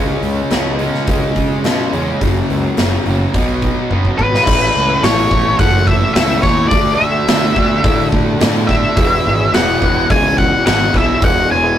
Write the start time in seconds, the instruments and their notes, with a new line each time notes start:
Already playing: picked electric bass C#2, distorted electric guitar C#3 G#3 C#4
0.22 picked electric bass C#2, open hi-hat
0.51 picked electric bass C#2, distorted electric guitar C#3 G#3 C#4, snare, open hi-hat
0.79 distorted electric guitar C#3 G#3 C#4, open hi-hat
0.94 snare
1.07 picked electric bass C#2, distorted electric guitar C#3 G#3 C#4, kick, open hi-hat
1.36 picked electric bass C#3, kick, open hi-hat
1.64 picked electric bass B2, distorted electric guitar C#3 G#3 C#4, snare, open hi-hat
1.93 picked electric bass E2, distorted electric guitar C#3 G#3 C#4, open hi-hat
2.21 picked electric bass F#1, distorted electric guitar F#2 C#3 F#3, kick, open hi-hat
2.50 picked electric bass C#2, open hi-hat
2.77 picked electric bass F#1, distorted electric guitar F#2 C#3 F#3, snare, open hi-hat
3.06 picked electric bass F#1, distorted electric guitar F#2 C#3 F#3, open hi-hat
3.34 picked electric bass B1, distorted electric guitar B2 F#3 B3, kick, open hi-hat
3.62 kick, open hi-hat
3.91 picked electric bass F#1, distorted electric guitar B2 F#3 B3, kick
4.05 kick
4.18 picked electric bass G#1, distorted electric guitar B2 F#3 B3, lead electric guitar B4, kick
4.35 snare
4.46 picked electric bass A1, distorted electric guitar A2 E3 A3, reed electric piano E4 A4 C#5 E5, kick, crash
4.73 picked electric bass C#2, reed electric piano E4 A4 C#5 E5
4.89 reed electric piano E4 A4 C#5 E5
5.02 picked electric bass A1, distorted electric guitar A2 E3 A3, lead electric guitar C#5, snare, open hi-hat
5.31 picked electric bass A1, distorted electric guitar A2 E3 A3, kick
5.59 picked electric bass F#1, distorted electric guitar A2 E3 A3, lead electric guitar F#5, kick, open hi-hat
5.87 lead electric guitar E5, kick
6.14 picked electric bass C#2, distorted electric guitar A2 E3 A3, lead electric guitar E5, snare, open hi-hat
6.42 picked electric bass D#2, distorted electric guitar A2 E3 A3, lead electric guitar C#5, kick, snare
6.68 picked electric bass D2, distorted electric guitar D3, reed electric piano F#4 A4 D5 E5, lead electric guitar D5, kick, open hi-hat
6.73 distorted electric guitar A3 D4
6.95 reed electric piano F#4 A4 D5 E5, lead electric guitar E5
7.00 picked electric bass D2
7.11 reed electric piano F#4 A4 D5 F#5
7.28 picked electric bass D2, distorted electric guitar D3 A3 D4, snare, open hi-hat
7.56 picked electric bass D2, distorted electric guitar D3 A3 D4, kick
7.84 picked electric bass A2, distorted electric guitar D3 A3 D4, kick, open hi-hat
8.12 picked electric bass A2, kick
8.40 picked electric bass A2, distorted electric guitar D3 A3 D4, snare, open hi-hat
8.67 distorted electric guitar D3 A3 D4, lead electric guitar E5, kick, snare
8.96 picked electric bass E1, distorted electric guitar E2 B2 E3, reed electric piano E4 G#4 B4 E5, kick, open hi-hat
9.26 picked electric bass G#1, reed electric piano E4 G#4 B4 E5
9.39 reed electric piano E4 G#4 B4 C#5
9.53 picked electric bass E1, distorted electric guitar E2 B2 E3, lead electric guitar F#5, snare, open hi-hat
9.81 picked electric bass E1, distorted electric guitar E2 B2 E3, kick
10.09 picked electric bass C#2, distorted electric guitar E2 B2 E3, lead electric guitar G#5, kick, open hi-hat
10.38 lead electric guitar F#5, kick
10.66 picked electric bass G#1, distorted electric guitar E2 B2 E3, lead electric guitar F#5, snare, open hi-hat
10.94 picked electric bass B1, distorted electric guitar E2 B2 E3, lead electric guitar E5, kick, snare
11.22 picked electric bass E1, distorted electric guitar E2 B2 E3, reed electric piano E4 G#4 B4 E5, lead electric guitar F#5, kick, open hi-hat
11.51 picked electric bass E1, reed electric piano E4 G#4 B4 C#5, lead electric guitar G#5
11.64 reed electric piano E4 G#4 B4 F#5